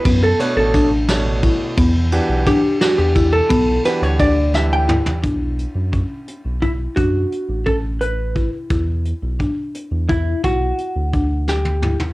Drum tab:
RD |x-x-x-x-x-|x-x-x-x-x-|x-x-x-----|----------|
HH |----------|----------|----------|x-x-x-x-x-|
SD |----o-o---|----o-o-o-|--o---o---|----------|
T1 |----------|----------|----------|----------|
T2 |----------|----------|--------o-|----------|
FT |----------|----------|---------o|----------|
BD |o---o---o-|o---o---o-|o---o-----|o---o---o-|

RD |----------|----------|----------|
HH |x-x-x-x-x-|x-x-x-x-x-|x-x-x-----|
SD |----------|----------|------o---|
T1 |----------|----------|-------o--|
T2 |----------|----------|--------o-|
FT |----------|----------|---------o|
BD |o---o---o-|o---o---o-|o---o-----|